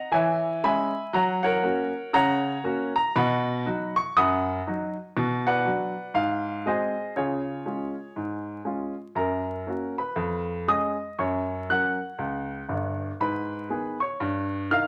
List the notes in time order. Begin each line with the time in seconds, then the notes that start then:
Already playing: A#5
0.12 E3 C#5 E5 G#5
0.64 G#3 C#4 E5 G#5 B5
1.13 F#3 C#5 F#5 A#5
1.43 A#4 C#5 F#5
1.62 A#3 C#4 F#4
2.13 C#3 C#5 F#5 A#5
2.64 A#3 C#4 F#4
2.96 A#5
3.16 B2 D#5 F#5 B5
3.66 F#3 D#4 F#4
3.96 C#6
4.17 F#2 F#5 B5 D#6
4.67 F#3 D#4 F#4
5.17 B2
5.47 B4 D5 F#5
5.65 F#3 D4 F#4
6.14 G#2 F5
6.66 G#3 C4 F#4 G#4 C5 D#5
7.16 C#3 F4 G#4 C#5
7.66 G#3 C#4 F4
8.16 G#2
8.65 G#3 C#4 F4
9.15 F#2 A#4 A#5
9.67 A#3 C#4 F#4
9.98 B4 B5
10.16 F2
10.68 G#3 C#4 G#4 D#5 D#6
11.18 F#2 C#5 C#6
11.69 F#3 C#4 A#4 F#5 F#6
12.18 C#2
12.69 G1 G2
13.20 G#2 B4 B5
13.70 D#3 B3 G#4
14.00 C#5 C#6
14.20 G2
14.71 D#3 D#4 A#4 F5 F6